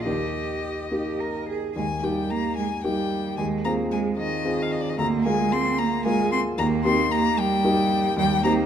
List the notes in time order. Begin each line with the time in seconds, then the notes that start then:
0.05 D#2 D#3 G4 D#5
0.91 A#3 D#4 G4
1.20 A#4
1.49 G#4
1.76 D#2 G#3 G#5
2.03 G3 A#3 D#4 G4 G5
2.30 A#3 A#5
2.56 G#3 G#5
2.84 G3 A#3 D#4 G4 G5
3.37 D#2 G#3 G#5
3.64 A#3 C4 F4 G#4 A#5
3.92 G#3 G#5
4.18 D#3 D#5
4.45 C4 F4 G#4
4.63 F5
4.72 D#5
4.81 D5
4.89 D#5
4.98 D2 A#3 A#5
5.24 G#3 A#3 F4 G#4 G#5
5.52 C4 C6
5.79 A#3 A#5
6.05 G#3 A#3 F4 G#4 G#5
6.32 C4 C6
6.58 D#2 A#3 A#5
6.84 A#3 C4 D#4 G4 C6
7.12 A#3 A#5
7.38 G3 G5
7.64 A#3 D#4 G4
8.16 D#2 G3 G5
8.44 A#3 C4 D#4 G4 A#5